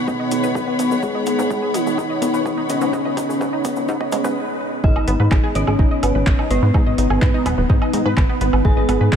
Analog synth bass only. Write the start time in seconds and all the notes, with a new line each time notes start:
0.08 F#1
0.31 F#1
0.44 F#1
0.55 B1
0.79 B1
0.91 B1
1.03 G#1
1.15 G#1
1.27 G#1
1.39 G#2
1.50 G#1
1.74 G#1
1.87 G#1
1.98 G#1
2.22 G#1
2.34 G#1
2.46 G#1
2.70 G#1
2.82 G#2
2.93 G#2
3.05 G#1
3.17 G#1
3.29 G#1
3.41 G#2
3.65 D#1
3.77 D#1
3.89 G#2
4.12 G#2
4.24 G#2
4.84 G#1
4.96 G#1
5.08 G#1
5.20 G#2
5.31 G#1
5.55 G#1
5.67 G#1
5.79 G#1
6.03 G#1
6.15 G#1
6.27 G#1
6.50 G#1
6.62 G#2
6.74 G#2
6.86 G#1
6.98 G#1
7.10 G#1
7.22 G#2
7.46 D#1
7.58 D#1
7.70 G#2
7.93 G#2
8.05 G#2
8.17 G#1
8.41 G#1
8.53 G#1
8.65 G#1
8.77 G#1
8.89 G#1
9.01 G#2
9.12 G#1